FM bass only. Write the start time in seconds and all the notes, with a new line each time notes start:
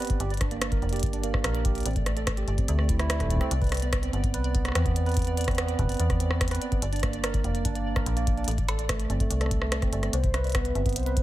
0.20 G1
0.82 F1
1.03 G1
1.44 A#1
1.86 A1
2.48 G1
2.68 D2
3.20 C2
3.51 C2
4.13 G1
4.34 C2
4.75 E2
5.79 G1
6.00 E2
6.82 G1
7.44 F1
7.65 G1
8.06 A#1
8.48 A1
9.10 G1
9.30 C2
9.93 G1
10.13 C2
10.75 G1
10.96 C2